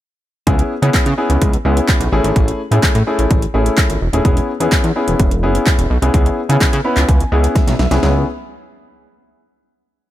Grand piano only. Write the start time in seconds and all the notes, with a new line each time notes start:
0.47 B3 C#4 E4 G#4
0.82 B3 C#4 E4 G#4
1.18 B3 C#4 E4 G#4
1.65 B3 C#4 E4 G#4
2.12 A3 C#4 E4 G#4
2.71 A3 C#4 E4 G#4
3.07 A3 C#4 E4 G#4
3.54 A3 C#4 E4 G#4
4.13 A3 C#4 E4 G#4
4.25 B3 C#4 E4 G#4
4.60 B3 C#4 E4 G#4
4.96 B3 C#4 E4 G#4
5.43 B3 C#4 E4 G#4
6.02 B3 C#4 E4 G#4
6.14 B3 C#4 E4 G#4
6.49 B3 C#4 E4 G#4
6.84 B3 C#4 E4 B4 B5
7.08 G#5
7.32 B3 C#4 E4 G#4 F#5
7.56 E5
7.79 E5
7.91 B3 C#4 E4 G#4
8.03 B3 C#4 E4 G#4